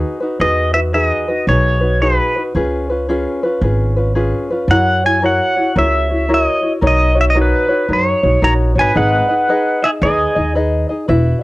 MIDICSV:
0, 0, Header, 1, 4, 480
1, 0, Start_track
1, 0, Key_signature, 5, "major"
1, 0, Tempo, 533808
1, 367, Time_signature, 4, 2, 24, 8
1, 10279, End_track
2, 0, Start_track
2, 0, Title_t, "Pedal steel guitar"
2, 0, Program_c, 0, 26
2, 371, Note_on_c, 0, 75, 83
2, 659, Note_off_c, 0, 75, 0
2, 663, Note_on_c, 0, 76, 84
2, 712, Note_off_c, 0, 76, 0
2, 847, Note_on_c, 0, 76, 78
2, 946, Note_off_c, 0, 76, 0
2, 946, Note_on_c, 0, 75, 78
2, 1332, Note_off_c, 0, 75, 0
2, 1335, Note_on_c, 0, 73, 82
2, 1815, Note_on_c, 0, 71, 59
2, 1829, Note_off_c, 0, 73, 0
2, 2180, Note_off_c, 0, 71, 0
2, 4233, Note_on_c, 0, 78, 91
2, 4540, Note_off_c, 0, 78, 0
2, 4550, Note_on_c, 0, 80, 89
2, 4715, Note_off_c, 0, 80, 0
2, 4727, Note_on_c, 0, 78, 81
2, 5202, Note_on_c, 0, 76, 88
2, 5206, Note_off_c, 0, 78, 0
2, 5683, Note_off_c, 0, 76, 0
2, 5701, Note_on_c, 0, 75, 88
2, 6046, Note_off_c, 0, 75, 0
2, 6178, Note_on_c, 0, 75, 84
2, 6472, Note_off_c, 0, 75, 0
2, 6481, Note_on_c, 0, 76, 77
2, 6511, Note_off_c, 0, 76, 0
2, 6564, Note_on_c, 0, 75, 72
2, 6636, Note_off_c, 0, 75, 0
2, 6668, Note_on_c, 0, 71, 71
2, 7132, Note_on_c, 0, 73, 68
2, 7135, Note_off_c, 0, 71, 0
2, 7579, Note_off_c, 0, 73, 0
2, 7590, Note_on_c, 0, 73, 64
2, 7591, Note_on_c, 0, 82, 86
2, 7670, Note_off_c, 0, 82, 0
2, 7671, Note_off_c, 0, 73, 0
2, 7906, Note_on_c, 0, 80, 79
2, 7919, Note_on_c, 0, 71, 68
2, 8063, Note_off_c, 0, 71, 0
2, 8066, Note_on_c, 0, 78, 96
2, 8072, Note_off_c, 0, 80, 0
2, 8084, Note_on_c, 0, 71, 69
2, 8818, Note_off_c, 0, 71, 0
2, 8848, Note_on_c, 0, 76, 73
2, 8860, Note_on_c, 0, 68, 65
2, 8868, Note_off_c, 0, 78, 0
2, 8893, Note_off_c, 0, 76, 0
2, 8905, Note_off_c, 0, 68, 0
2, 9020, Note_on_c, 0, 75, 71
2, 9039, Note_on_c, 0, 68, 55
2, 9462, Note_off_c, 0, 75, 0
2, 9472, Note_off_c, 0, 68, 0
2, 10279, End_track
3, 0, Start_track
3, 0, Title_t, "Ukulele"
3, 0, Program_c, 1, 24
3, 0, Note_on_c, 1, 63, 73
3, 0, Note_on_c, 1, 66, 66
3, 0, Note_on_c, 1, 68, 57
3, 0, Note_on_c, 1, 71, 70
3, 172, Note_off_c, 1, 71, 0
3, 183, Note_on_c, 1, 71, 53
3, 186, Note_off_c, 1, 66, 0
3, 186, Note_off_c, 1, 68, 0
3, 187, Note_off_c, 1, 63, 0
3, 196, Note_on_c, 1, 66, 44
3, 204, Note_on_c, 1, 63, 44
3, 352, Note_off_c, 1, 63, 0
3, 355, Note_on_c, 1, 68, 69
3, 357, Note_off_c, 1, 66, 0
3, 358, Note_off_c, 1, 71, 0
3, 363, Note_on_c, 1, 63, 57
3, 367, Note_on_c, 1, 66, 68
3, 369, Note_on_c, 1, 71, 80
3, 657, Note_off_c, 1, 71, 0
3, 664, Note_off_c, 1, 66, 0
3, 667, Note_on_c, 1, 71, 46
3, 668, Note_off_c, 1, 68, 0
3, 672, Note_off_c, 1, 63, 0
3, 675, Note_on_c, 1, 66, 42
3, 684, Note_on_c, 1, 63, 37
3, 833, Note_off_c, 1, 63, 0
3, 839, Note_on_c, 1, 68, 82
3, 842, Note_off_c, 1, 71, 0
3, 843, Note_off_c, 1, 66, 0
3, 844, Note_on_c, 1, 63, 75
3, 852, Note_on_c, 1, 71, 79
3, 853, Note_on_c, 1, 66, 82
3, 1140, Note_off_c, 1, 71, 0
3, 1150, Note_off_c, 1, 66, 0
3, 1151, Note_off_c, 1, 68, 0
3, 1151, Note_on_c, 1, 71, 51
3, 1153, Note_off_c, 1, 63, 0
3, 1161, Note_on_c, 1, 66, 49
3, 1171, Note_on_c, 1, 63, 42
3, 1323, Note_off_c, 1, 63, 0
3, 1323, Note_on_c, 1, 68, 52
3, 1327, Note_off_c, 1, 71, 0
3, 1328, Note_off_c, 1, 66, 0
3, 1334, Note_on_c, 1, 63, 63
3, 1339, Note_on_c, 1, 66, 55
3, 1342, Note_on_c, 1, 71, 58
3, 1614, Note_off_c, 1, 71, 0
3, 1625, Note_on_c, 1, 71, 53
3, 1629, Note_off_c, 1, 66, 0
3, 1634, Note_off_c, 1, 63, 0
3, 1634, Note_off_c, 1, 68, 0
3, 1639, Note_on_c, 1, 66, 46
3, 1645, Note_on_c, 1, 63, 38
3, 1801, Note_off_c, 1, 63, 0
3, 1805, Note_off_c, 1, 71, 0
3, 1807, Note_off_c, 1, 66, 0
3, 1808, Note_on_c, 1, 68, 62
3, 1812, Note_on_c, 1, 63, 66
3, 1816, Note_on_c, 1, 71, 79
3, 1818, Note_on_c, 1, 66, 70
3, 2110, Note_off_c, 1, 71, 0
3, 2117, Note_off_c, 1, 68, 0
3, 2118, Note_off_c, 1, 63, 0
3, 2120, Note_off_c, 1, 66, 0
3, 2121, Note_on_c, 1, 71, 44
3, 2130, Note_on_c, 1, 66, 48
3, 2139, Note_on_c, 1, 63, 38
3, 2294, Note_off_c, 1, 71, 0
3, 2295, Note_off_c, 1, 63, 0
3, 2295, Note_on_c, 1, 68, 78
3, 2296, Note_off_c, 1, 66, 0
3, 2298, Note_on_c, 1, 61, 74
3, 2300, Note_on_c, 1, 65, 78
3, 2307, Note_on_c, 1, 71, 82
3, 2593, Note_off_c, 1, 71, 0
3, 2600, Note_off_c, 1, 68, 0
3, 2602, Note_off_c, 1, 61, 0
3, 2603, Note_off_c, 1, 65, 0
3, 2604, Note_on_c, 1, 71, 59
3, 2614, Note_on_c, 1, 65, 48
3, 2621, Note_on_c, 1, 61, 45
3, 2770, Note_off_c, 1, 61, 0
3, 2773, Note_off_c, 1, 65, 0
3, 2775, Note_on_c, 1, 68, 75
3, 2776, Note_off_c, 1, 71, 0
3, 2781, Note_on_c, 1, 61, 87
3, 2784, Note_on_c, 1, 65, 92
3, 2790, Note_on_c, 1, 71, 94
3, 3074, Note_off_c, 1, 71, 0
3, 3081, Note_off_c, 1, 68, 0
3, 3084, Note_off_c, 1, 61, 0
3, 3085, Note_on_c, 1, 71, 63
3, 3086, Note_off_c, 1, 65, 0
3, 3098, Note_on_c, 1, 65, 52
3, 3105, Note_on_c, 1, 61, 43
3, 3256, Note_off_c, 1, 61, 0
3, 3257, Note_off_c, 1, 71, 0
3, 3258, Note_on_c, 1, 68, 58
3, 3259, Note_off_c, 1, 65, 0
3, 3267, Note_on_c, 1, 61, 61
3, 3270, Note_on_c, 1, 65, 60
3, 3275, Note_on_c, 1, 71, 66
3, 3554, Note_off_c, 1, 71, 0
3, 3560, Note_off_c, 1, 65, 0
3, 3563, Note_off_c, 1, 68, 0
3, 3565, Note_on_c, 1, 71, 57
3, 3567, Note_off_c, 1, 61, 0
3, 3571, Note_on_c, 1, 65, 50
3, 3581, Note_on_c, 1, 61, 50
3, 3726, Note_off_c, 1, 61, 0
3, 3727, Note_off_c, 1, 65, 0
3, 3731, Note_off_c, 1, 71, 0
3, 3731, Note_on_c, 1, 68, 65
3, 3737, Note_on_c, 1, 61, 71
3, 3738, Note_on_c, 1, 65, 72
3, 3742, Note_on_c, 1, 71, 81
3, 4039, Note_off_c, 1, 71, 0
3, 4040, Note_off_c, 1, 68, 0
3, 4042, Note_off_c, 1, 61, 0
3, 4043, Note_off_c, 1, 65, 0
3, 4050, Note_on_c, 1, 71, 61
3, 4061, Note_on_c, 1, 65, 50
3, 4067, Note_on_c, 1, 61, 39
3, 4220, Note_off_c, 1, 71, 0
3, 4221, Note_on_c, 1, 70, 59
3, 4226, Note_off_c, 1, 61, 0
3, 4226, Note_off_c, 1, 65, 0
3, 4229, Note_on_c, 1, 64, 75
3, 4232, Note_on_c, 1, 66, 74
3, 4234, Note_on_c, 1, 73, 74
3, 4519, Note_off_c, 1, 73, 0
3, 4525, Note_off_c, 1, 70, 0
3, 4528, Note_off_c, 1, 66, 0
3, 4529, Note_off_c, 1, 64, 0
3, 4530, Note_on_c, 1, 73, 49
3, 4539, Note_on_c, 1, 66, 43
3, 4545, Note_on_c, 1, 64, 43
3, 4690, Note_off_c, 1, 73, 0
3, 4692, Note_off_c, 1, 64, 0
3, 4693, Note_off_c, 1, 66, 0
3, 4694, Note_on_c, 1, 70, 77
3, 4703, Note_on_c, 1, 64, 76
3, 4704, Note_on_c, 1, 66, 82
3, 4709, Note_on_c, 1, 73, 84
3, 4993, Note_off_c, 1, 73, 0
3, 5000, Note_off_c, 1, 70, 0
3, 5001, Note_off_c, 1, 66, 0
3, 5003, Note_on_c, 1, 73, 53
3, 5006, Note_off_c, 1, 64, 0
3, 5012, Note_on_c, 1, 66, 48
3, 5021, Note_on_c, 1, 64, 39
3, 5168, Note_off_c, 1, 73, 0
3, 5170, Note_off_c, 1, 64, 0
3, 5172, Note_on_c, 1, 70, 56
3, 5178, Note_off_c, 1, 66, 0
3, 5181, Note_on_c, 1, 64, 53
3, 5188, Note_on_c, 1, 66, 55
3, 5190, Note_on_c, 1, 73, 65
3, 5469, Note_off_c, 1, 73, 0
3, 5476, Note_off_c, 1, 70, 0
3, 5479, Note_on_c, 1, 73, 48
3, 5480, Note_off_c, 1, 66, 0
3, 5485, Note_off_c, 1, 64, 0
3, 5491, Note_on_c, 1, 66, 42
3, 5500, Note_on_c, 1, 64, 36
3, 5643, Note_off_c, 1, 64, 0
3, 5647, Note_off_c, 1, 73, 0
3, 5649, Note_off_c, 1, 66, 0
3, 5650, Note_on_c, 1, 70, 71
3, 5654, Note_on_c, 1, 64, 76
3, 5660, Note_on_c, 1, 66, 77
3, 5660, Note_on_c, 1, 73, 80
3, 5945, Note_off_c, 1, 73, 0
3, 5952, Note_off_c, 1, 70, 0
3, 5953, Note_off_c, 1, 66, 0
3, 5956, Note_on_c, 1, 73, 49
3, 5961, Note_off_c, 1, 64, 0
3, 5964, Note_on_c, 1, 66, 44
3, 5971, Note_on_c, 1, 64, 39
3, 6122, Note_off_c, 1, 73, 0
3, 6124, Note_off_c, 1, 66, 0
3, 6125, Note_on_c, 1, 70, 66
3, 6131, Note_off_c, 1, 64, 0
3, 6133, Note_on_c, 1, 63, 74
3, 6135, Note_on_c, 1, 66, 70
3, 6141, Note_on_c, 1, 73, 75
3, 6417, Note_off_c, 1, 73, 0
3, 6426, Note_off_c, 1, 66, 0
3, 6428, Note_on_c, 1, 73, 53
3, 6434, Note_off_c, 1, 63, 0
3, 6436, Note_on_c, 1, 66, 44
3, 6437, Note_off_c, 1, 70, 0
3, 6445, Note_on_c, 1, 63, 40
3, 6602, Note_off_c, 1, 63, 0
3, 6604, Note_on_c, 1, 70, 82
3, 6606, Note_off_c, 1, 66, 0
3, 6609, Note_off_c, 1, 73, 0
3, 6612, Note_on_c, 1, 63, 84
3, 6617, Note_on_c, 1, 66, 85
3, 6621, Note_on_c, 1, 73, 86
3, 6899, Note_off_c, 1, 73, 0
3, 6907, Note_off_c, 1, 66, 0
3, 6910, Note_on_c, 1, 73, 53
3, 6916, Note_off_c, 1, 70, 0
3, 6917, Note_off_c, 1, 63, 0
3, 6918, Note_on_c, 1, 66, 47
3, 6928, Note_on_c, 1, 63, 45
3, 7082, Note_off_c, 1, 63, 0
3, 7088, Note_off_c, 1, 66, 0
3, 7088, Note_on_c, 1, 70, 50
3, 7090, Note_off_c, 1, 73, 0
3, 7092, Note_on_c, 1, 63, 53
3, 7099, Note_on_c, 1, 66, 58
3, 7102, Note_on_c, 1, 73, 56
3, 7388, Note_off_c, 1, 73, 0
3, 7395, Note_off_c, 1, 66, 0
3, 7397, Note_off_c, 1, 70, 0
3, 7399, Note_on_c, 1, 73, 48
3, 7400, Note_off_c, 1, 63, 0
3, 7406, Note_on_c, 1, 66, 42
3, 7417, Note_on_c, 1, 63, 39
3, 7560, Note_off_c, 1, 63, 0
3, 7569, Note_off_c, 1, 66, 0
3, 7569, Note_on_c, 1, 70, 66
3, 7570, Note_on_c, 1, 63, 66
3, 7571, Note_off_c, 1, 73, 0
3, 7580, Note_on_c, 1, 66, 77
3, 7582, Note_on_c, 1, 73, 76
3, 7860, Note_off_c, 1, 73, 0
3, 7871, Note_on_c, 1, 73, 45
3, 7873, Note_off_c, 1, 66, 0
3, 7878, Note_off_c, 1, 63, 0
3, 7878, Note_off_c, 1, 70, 0
3, 7884, Note_on_c, 1, 66, 47
3, 7892, Note_on_c, 1, 63, 46
3, 8035, Note_off_c, 1, 63, 0
3, 8044, Note_on_c, 1, 71, 69
3, 8046, Note_on_c, 1, 63, 73
3, 8047, Note_off_c, 1, 66, 0
3, 8049, Note_off_c, 1, 73, 0
3, 8050, Note_on_c, 1, 68, 79
3, 8056, Note_on_c, 1, 75, 77
3, 8337, Note_off_c, 1, 75, 0
3, 8345, Note_off_c, 1, 68, 0
3, 8348, Note_on_c, 1, 75, 48
3, 8353, Note_off_c, 1, 63, 0
3, 8354, Note_off_c, 1, 71, 0
3, 8356, Note_on_c, 1, 68, 45
3, 8363, Note_on_c, 1, 63, 37
3, 8527, Note_off_c, 1, 63, 0
3, 8527, Note_off_c, 1, 75, 0
3, 8530, Note_off_c, 1, 68, 0
3, 8532, Note_on_c, 1, 71, 84
3, 8537, Note_on_c, 1, 63, 70
3, 8540, Note_on_c, 1, 75, 80
3, 8541, Note_on_c, 1, 68, 81
3, 8822, Note_off_c, 1, 75, 0
3, 8832, Note_off_c, 1, 68, 0
3, 8833, Note_on_c, 1, 75, 52
3, 8838, Note_off_c, 1, 71, 0
3, 8841, Note_off_c, 1, 63, 0
3, 8843, Note_on_c, 1, 68, 49
3, 8855, Note_on_c, 1, 63, 39
3, 9006, Note_off_c, 1, 63, 0
3, 9009, Note_off_c, 1, 75, 0
3, 9014, Note_on_c, 1, 71, 60
3, 9015, Note_off_c, 1, 68, 0
3, 9017, Note_on_c, 1, 63, 55
3, 9027, Note_on_c, 1, 68, 60
3, 9028, Note_on_c, 1, 75, 56
3, 9297, Note_off_c, 1, 75, 0
3, 9308, Note_on_c, 1, 75, 53
3, 9310, Note_off_c, 1, 68, 0
3, 9315, Note_off_c, 1, 63, 0
3, 9319, Note_off_c, 1, 71, 0
3, 9320, Note_on_c, 1, 68, 43
3, 9326, Note_on_c, 1, 63, 46
3, 9480, Note_off_c, 1, 63, 0
3, 9483, Note_off_c, 1, 68, 0
3, 9487, Note_off_c, 1, 75, 0
3, 9488, Note_on_c, 1, 71, 69
3, 9491, Note_on_c, 1, 63, 68
3, 9493, Note_on_c, 1, 68, 80
3, 9499, Note_on_c, 1, 75, 77
3, 9782, Note_off_c, 1, 75, 0
3, 9789, Note_off_c, 1, 68, 0
3, 9793, Note_on_c, 1, 75, 53
3, 9795, Note_off_c, 1, 71, 0
3, 9797, Note_off_c, 1, 63, 0
3, 9800, Note_on_c, 1, 68, 50
3, 9808, Note_on_c, 1, 63, 46
3, 9962, Note_off_c, 1, 63, 0
3, 9962, Note_on_c, 1, 71, 75
3, 9965, Note_off_c, 1, 68, 0
3, 9965, Note_on_c, 1, 66, 75
3, 9969, Note_off_c, 1, 75, 0
3, 9969, Note_on_c, 1, 64, 84
3, 9974, Note_on_c, 1, 76, 101
3, 10251, Note_off_c, 1, 76, 0
3, 10261, Note_off_c, 1, 64, 0
3, 10272, Note_off_c, 1, 71, 0
3, 10274, Note_off_c, 1, 66, 0
3, 10279, End_track
4, 0, Start_track
4, 0, Title_t, "Upright bass"
4, 0, Program_c, 2, 32
4, 357, Note_on_c, 2, 40, 74
4, 986, Note_off_c, 2, 40, 0
4, 1323, Note_on_c, 2, 35, 79
4, 1951, Note_off_c, 2, 35, 0
4, 2290, Note_on_c, 2, 37, 73
4, 2916, Note_off_c, 2, 37, 0
4, 3249, Note_on_c, 2, 32, 81
4, 3876, Note_off_c, 2, 32, 0
4, 4206, Note_on_c, 2, 42, 83
4, 4833, Note_off_c, 2, 42, 0
4, 5177, Note_on_c, 2, 37, 88
4, 5801, Note_off_c, 2, 37, 0
4, 6134, Note_on_c, 2, 35, 85
4, 6758, Note_off_c, 2, 35, 0
4, 7092, Note_on_c, 2, 42, 71
4, 7292, Note_off_c, 2, 42, 0
4, 7403, Note_on_c, 2, 35, 72
4, 7559, Note_off_c, 2, 35, 0
4, 7573, Note_on_c, 2, 34, 75
4, 7849, Note_off_c, 2, 34, 0
4, 7873, Note_on_c, 2, 32, 72
4, 8033, Note_off_c, 2, 32, 0
4, 8053, Note_on_c, 2, 32, 84
4, 8252, Note_off_c, 2, 32, 0
4, 9007, Note_on_c, 2, 39, 97
4, 9207, Note_off_c, 2, 39, 0
4, 9319, Note_on_c, 2, 39, 70
4, 9743, Note_off_c, 2, 39, 0
4, 9969, Note_on_c, 2, 28, 89
4, 10168, Note_off_c, 2, 28, 0
4, 10279, End_track
0, 0, End_of_file